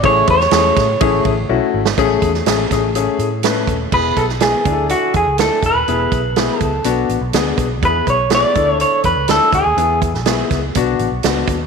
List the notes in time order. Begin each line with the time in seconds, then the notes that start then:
0.03 A1 A3 C#4 E4 G#4 C#5, kick, ride
0.27 E2 C#5, kick, ride
0.40 snare
0.51 E2 A3 C#4 E4 G#4, snare, ride
0.76 A2, kick, snare, ride
1.01 A1 A3 C#4 E4 G#4, kick, ride
1.25 A1, kick, ride
1.49 B1 A3 C#4 E4 F#4
1.74 G#1
1.85 snare
1.98 A1 A3 C#4 G#4, kick, closed hi-hat
2.22 E2, kick, closed hi-hat
2.34 snare
2.46 A1 A3 C#4 G#4, snare, closed hi-hat
2.70 A1 A3 C#4 G#4, kick, snare, closed hi-hat
2.95 A3 C#4 G#4, closed hi-hat
3.19 A2, closed hi-hat
3.43 A3 C#4 B4, snare, closed hi-hat
3.67 D#1, kick, closed hi-hat
3.92 E1 B3 E4 G#4 B4, kick, crash
4.16 B1 A4, kick, closed hi-hat
4.29 snare
4.40 B3 E4 G#4, snare, closed hi-hat
4.65 D2 D4 E4 G#4, kick, closed hi-hat
4.72 A4
4.89 F#4, closed hi-hat
5.14 E2 G#4, kick, closed hi-hat
5.26 C#2
5.38 D2 D4 E4 A4, snare, closed hi-hat
5.63 E1 B4, kick, closed hi-hat
5.75 D#1
5.88 E1 B3 E4 G#4, closed hi-hat
6.12 B1, kick, closed hi-hat
6.36 B3 E4 G#4, snare, closed hi-hat
6.60 C#2 A4, kick, closed hi-hat
6.84 B1 B3 D4 F#4, closed hi-hat
7.09 A1, closed hi-hat
7.21 B1
7.33 D2 B3 D4 G#4, snare, closed hi-hat
7.58 B1, kick, closed hi-hat
7.83 E2 B3 E4 G#4 B4, kick, closed hi-hat
8.07 B1 C#5, kick, closed hi-hat
8.30 B3 E4 G#4, snare, closed hi-hat
8.35 D5
8.55 D2 D4 E4 A4, kick, closed hi-hat
8.71 C#5
8.80 C#5, closed hi-hat
9.03 E2 B4, kick, closed hi-hat
9.16 C#2
9.28 D2 D4 E4 A4, snare, closed hi-hat
9.52 D2 G#4, kick, closed hi-hat
9.66 D#2
9.77 E2 B3 E4 G#4, closed hi-hat
10.02 kick, closed hi-hat
10.14 B1, snare
10.25 B3 E4 G#4, snare, closed hi-hat
10.51 C#2, kick, snare, closed hi-hat
10.75 B1 B3 D4 F#4, kick, closed hi-hat
10.99 A1, closed hi-hat
11.12 B1
11.23 C#2 B3 D4 F#4, snare, closed hi-hat
11.47 D#2, kick, closed hi-hat